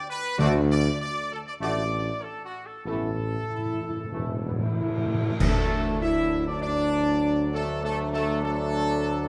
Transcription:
0.10 B4
0.38 D2 D3 A3 D4 F#4 D5
0.71 D5
1.02 D5
1.32 A4
1.47 D5
1.60 A1 D3 A3 D4 F#4 D5
2.23 A4
2.46 F#4
2.67 A4
2.85 A1 A2 E3 A3 B3 E4 A4
2.95 A2
3.02 A2
3.10 A2
3.18 A2
3.26 A2
3.34 A2
3.42 A2
3.50 A2 E4
3.58 A2
3.65 A2
3.73 A2
3.81 A2 E4
3.89 A2
3.97 A2
4.04 A2
4.12 E1 A2 E3 A3 E4
4.19 A2
4.28 A2
4.35 A2
4.43 A2 B3
4.51 A2
4.59 A2 E4
4.66 A2
4.74 A2 E4
4.82 A2
4.89 A2
4.97 A2
5.06 A2
5.14 A2
5.22 A2
5.30 A2
5.39 D2 D3 F#3 A3 D4 A4, concert bass drum, crash
6.01 E4 E5
6.46 D4 D5
6.62 D4 D5
7.54 A3 A4
7.83 A3 A4
8.13 A3 A4
8.42 A3 A4

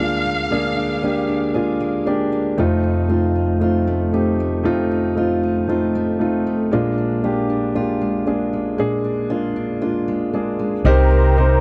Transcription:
Already playing: D2 D3 A#3 G#4 F5
0.00 G#3 A#3 D4 F4
0.26 A#3
0.50 D3 G#3 A#3 D4 G#4
0.77 D4
1.02 G#3 A#3 D4 G4 G#4
1.28 D4
1.54 G#3 A#3 D4 F4 G#4
1.80 A#3
2.05 G#3 A#3 D4 G4
2.32 A#3
2.57 F1 F2 A3 C4 D#4 F4
2.84 D#4
3.08 A3 C4 D#4 F4
3.35 D#4
3.60 A3 C4 D#4 F4
3.87 A3
4.12 A3 C4 D#4 G4
4.40 A3
4.64 F2 A3 C4 D#4 F4
4.91 D#4
5.15 A3 C4 D#4 F4
5.43 D#4
5.68 A3 C4 D#4 F4
5.95 A3
6.19 A3 C4 D#4 F4
6.47 A3
6.71 A#1 A#2 G#3 A#3 D4 F4
6.98 D4
7.22 G#3 A#3 D4 F4 G4
7.50 D4
7.74 G#3 A#3 D4 F4 G4
8.01 G#3
8.26 G#3 A#3 D4 G#4
8.53 G#3
8.78 A#2 G#3 A#3 D4 G#4
9.04 D4
9.30 G#3 A#3 D4 F4
9.56 D4
9.82 G#3 A#3 D4 F4
10.08 G#3
10.33 G#3 A#3 D4 G#4
10.59 G#3
10.85 C2 C3 C4 D#4 G4 A#4 C5 G5 A#5 C6
11.11 A#3
11.36 C4 D#4 G4 A#4 C5

